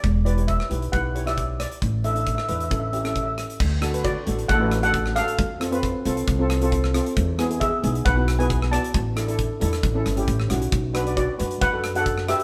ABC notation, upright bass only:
X:1
M:4/4
L:1/8
Q:1/4=135
K:D
V:1 name="Upright bass" clef=bass
E,,,3 B,,, B,,,4 | A,,,3 E,, A,,,4 | D,,3 A,,, A,,,4 | =F,,3 =C,, C,,4 |
E,,3 B,,, B,,,4 | A,,,3 E,, A,,, G,,, A,,, B,,, | B,,,3 F,, F,,4 |]